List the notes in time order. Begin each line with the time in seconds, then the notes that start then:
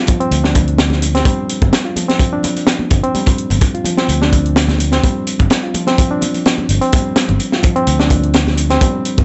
Already playing: F3 G3 C4 D4 F4
0.07 F3, kick, closed hi-hat, muted conga, high conga
0.20 C4, closed hi-hat
0.31 D2, closed hi-hat
0.44 D4, snare
0.55 kick, closed hi-hat, high conga, low conga
0.68 closed hi-hat
0.78 snare, closed hi-hat
0.90 snare, high conga
1.02 closed hi-hat, muted conga
1.15 C4, snare, closed hi-hat
1.25 G3, kick, closed hi-hat, high conga
1.50 closed hi-hat
1.62 G1, kick, closed hi-hat, high conga, low conga
1.73 snare, closed hi-hat
1.85 F4
1.96 F3, closed hi-hat, muted conga, high conga
2.09 C4, snare, closed hi-hat
2.19 kick, closed hi-hat
2.33 D4
2.43 closed hi-hat, high conga, low conga
2.56 closed hi-hat, muted conga
2.67 snare, closed hi-hat
2.79 high conga
2.90 G1, kick, closed hi-hat
3.04 C4, closed hi-hat
3.15 G3, closed hi-hat, high conga
3.26 kick, closed hi-hat
3.38 closed hi-hat
3.50 G1, closed hi-hat, high conga, low conga
3.61 kick, closed hi-hat
3.74 F4, closed hi-hat
3.85 F3, closed hi-hat, muted conga, high conga
3.97 C4, snare, closed hi-hat
4.09 D2, closed hi-hat
4.22 D4, snare
4.32 kick, closed hi-hat, high conga, low conga
4.46 closed hi-hat
4.56 snare, closed hi-hat
4.69 snare, closed hi-hat, high conga
4.79 closed hi-hat, muted conga
4.92 C4, snare, closed hi-hat
5.03 G3, kick, closed hi-hat, high conga
5.27 closed hi-hat
5.39 G1, kick, closed hi-hat, high conga, low conga
5.50 snare, closed hi-hat
5.63 F4
5.74 F3, closed hi-hat, muted conga, high conga
5.87 C4, snare, closed hi-hat
5.98 kick, closed hi-hat
6.11 D4
6.21 closed hi-hat, high conga, low conga
6.34 closed hi-hat, muted conga
6.46 snare, closed hi-hat
6.58 high conga
6.69 G1, closed hi-hat
6.82 C4, closed hi-hat
6.93 G3, kick, closed hi-hat, high conga
7.16 snare, closed hi-hat
7.29 G1, closed hi-hat, high conga, low conga
7.40 closed hi-hat
7.52 F4, snare
7.63 F3, kick, closed hi-hat, muted conga, high conga
7.76 C4, closed hi-hat
7.87 D2, closed hi-hat
7.99 D4, snare
8.10 kick, closed hi-hat, high conga, low conga
8.24 closed hi-hat
8.34 snare, closed hi-hat
8.47 snare, high conga
8.57 closed hi-hat, muted conga
8.70 C4, snare, closed hi-hat
8.81 G3, kick, closed hi-hat, high conga
9.05 closed hi-hat
9.17 G1, kick, closed hi-hat, high conga, low conga